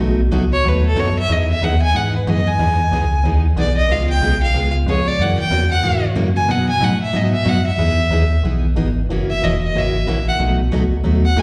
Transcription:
Already playing: steel-string acoustic guitar B2
0.00 fm bass B1, steel-string acoustic guitar F#3 A3 D#4 F#4
0.31 fm bass C#2, steel-string acoustic guitar B2 F#3 A3 D#4 F#4
0.52 fm bass C#2, fiddle C#5
0.64 fm bass D#2, steel-string acoustic guitar B2 F#3 A3 D#4 F#4
0.68 fiddle B4
0.86 fiddle A4
0.96 fm bass F#2, steel-string acoustic guitar B2 F#3 A3 D#4 F#4
1.00 fiddle C#5
1.19 fiddle E5
1.29 fm bass E2, steel-string acoustic guitar E3 B3 D#4 G#4, fiddle D#5
1.50 fiddle E5
1.62 fm bass D#2, steel-string acoustic guitar E3 B3 D#4 G#4, fiddle F#5
1.82 fiddle G#5
1.94 fm bass G#2, steel-string acoustic guitar E3 B3 D#4 G#4, fiddle F#5
2.16 fiddle B4
2.27 fm bass F#2, steel-string acoustic guitar E3 B3 D#4 G#4, fiddle D#5
2.48 fiddle G#5
2.59 fm bass E2, steel-string acoustic guitar E3 B3 D#4 G#4
2.92 fm bass C#2, steel-string acoustic guitar E3 B3 D#4 G#4
3.24 fm bass D#2, steel-string acoustic guitar E3 B3 D#4 G#4
3.56 fm bass B1, steel-string acoustic guitar E3 B3 D#4 G#4, fiddle D5
3.77 fiddle D#5
3.89 fm bass C#2, steel-string acoustic guitar C#3 G#3 B3 F4 G#4, fiddle F5
4.10 fiddle G5
4.21 fm bass B1, steel-string acoustic guitar C#3 G#3 B3 F4 G#4
4.43 fiddle F5
4.54 fm bass C#2, steel-string acoustic guitar C#3 G#3 B3 F4 G#4
4.86 fm bass F2, steel-string acoustic guitar C#3 G#3 B3 F4 G#4, fiddle C#5
5.08 fiddle D5
5.19 fm bass F#2, steel-string acoustic guitar C#3 E3 A#3 C#4 F#4, fiddle F#5
5.39 fm bass F#2, fiddle G5
5.51 fm bass E2, steel-string acoustic guitar C#3 E3 A#3 C#4 F#4
5.71 fiddle F#5
5.83 fm bass G#2, steel-string acoustic guitar C#3 E3 A#3 C#4 F#4
6.15 fm bass F#2, steel-string acoustic guitar C#3 E3 A#3 C#4 F#4
6.36 fiddle G#5
6.47 steel-string acoustic guitar B2 F#3 B3 D#4 F#4, fm bass B2, fiddle F#5
6.69 fiddle G#5
6.80 fm bass A2, steel-string acoustic guitar B2 F#3 B3 D#4 F#4, fiddle F#5
7.02 fiddle E5
7.13 fm bass G#2, steel-string acoustic guitar B2 F#3 B3 D#4 F#4, fiddle D#5
7.34 fiddle E5
7.44 fm bass F#2, steel-string acoustic guitar B2 F#3 B3 D#4 F#4
7.49 fiddle F#5
7.66 fiddle E5
7.77 fm bass E2, steel-string acoustic guitar E3 B3 D#4 G#4
8.10 fm bass D#2, steel-string acoustic guitar E3 B3 D#4 G#4
8.43 fm bass B1, steel-string acoustic guitar E3 B3 D#4 G#4
8.76 fm bass G#1, steel-string acoustic guitar E3 B3 D#4 G#4
9.09 fm bass F#1, steel-string acoustic guitar C#3 E3 A#3 C#4 F#4
9.30 fiddle E5
9.42 fm bass E1, steel-string acoustic guitar C#3 E3 A#3 C#4 F#4, fiddle D#5
9.63 fiddle D#5
9.75 fm bass G#1, steel-string acoustic guitar C#3 E3 A#3 C#4 F#4, fiddle E5
10.07 fm bass A#1, steel-string acoustic guitar C#3 E3 A#3 C#4 F#4
10.28 fiddle F#5
10.39 fm bass B1, steel-string acoustic guitar B2 F#3 A3 D#4 F#4
10.72 fm bass C#2, steel-string acoustic guitar B2 F#3 A3 D#4 F#4
10.92 fm bass C#2
11.03 fm bass D#2, steel-string acoustic guitar B2 F#3 A3 D#4 F#4
11.25 fiddle F#5
11.36 fm bass F#2, steel-string acoustic guitar B2 F#3 A3 D#4 F#4, fiddle G#5

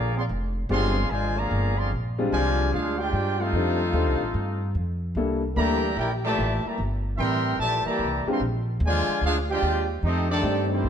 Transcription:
Already playing: upright bass A#1, trombone section D3 F3 A#3, trumpet section G#4 D5 F5 A#5
0.15 trombone section F3 G#3 C4, trumpet section G#4 D5 F5 C6
0.29 upright bass F1
0.69 upright bass G1, trombone section F3 G#3 C4, grand piano G#3 C4 D4 F4 G4, trumpet section G#4 D5 F5 C6
1.10 upright bass G#1, trombone section D3 F3 G#3, trumpet section F4 C5 D5 G#5
1.36 trombone section D3 F3 A#3, trumpet section G#4 D5 F5 A#5
1.51 upright bass G1
1.75 trombone section F3 G#3 C4, trumpet section G#4 D5 F5 C6
1.92 upright bass A#1
2.18 grand piano G3 G#3 C4 D4 F4
2.30 upright bass C2, trombone section D3 F3 G#3, trumpet section F4 C5 D5 G#5
2.72 upright bass D2, trombone section G#3 D4 F4, trumpet section D4 G#4 C5 F5
2.98 trombone section G#3 D4 G4, trumpet section F4 C5 D5 G5
3.13 upright bass G2
3.38 trombone section A3 C4 F4, trumpet section D#4 A4 C5 F5
3.53 upright bass F2, grand piano G3 C4 D4 D#4 A4
3.93 upright bass D#2, grand piano G3 C4 D4 D#4 A4
4.07 upright bass C2
4.21 upright bass A1
4.34 upright bass G2
4.75 upright bass F2
5.15 upright bass C2, grand piano G3 A#3 D4 E4 A4
5.55 upright bass D2, trombone section E3 G3 A#3, grand piano G3 A#3 D4 E4 A4, trumpet section G4 D5 E5 A#5
5.96 upright bass A#1, trombone section A#3 E4 G4, trumpet section E4 A#4 D5 G5
6.24 trombone section A#2 E3 A3, trumpet section G4 D5 E5 A5
6.38 upright bass A1
6.65 trombone section E3 G3 A#3, trumpet section G4 E5 A#5, muted upright bass stroke
6.69 trumpet section D5
6.78 upright bass G1
7.18 upright bass A1, trombone section E3 G3 C4, trumpet section A#4 E5 G5 C6
7.58 upright bass A#1, trombone section A#2 E3 A3, trumpet section G4 D5 E5 A5
7.85 trombone section E3 G3 A#3, trumpet section G4 D5 E5 A#5, muted upright bass stroke
7.99 upright bass C2
8.26 trombone section E3 G3 C4, grand piano G#3 C4 D4 F4 G4, muted upright bass stroke
8.30 trumpet section A#4 E5 G5 C6
8.40 upright bass A#1
8.80 upright bass D#2
8.84 trombone section D3 F3 G#3, trumpet section F4 C5 D5 G#5
9.21 upright bass D2, trombone section G#3 D4 F4, trumpet section G#4
9.25 trumpet section D4 C5 F5
9.50 trombone section G#3 D4 G4, trumpet section F4 C5 D5 G5
9.62 upright bass D#2
10.03 upright bass F2, trombone section A3 C4 D#4, trumpet section C4 G4 A4 D#5
10.30 trombone section D#3 A3 D4, trumpet section C4 G4 A4 D5
10.43 upright bass G2, grand piano A3 C4 D4 D#4 G4
10.70 trombone section E3 G3 C4, trumpet section A#3 E4 G4 C5
10.83 upright bass C2

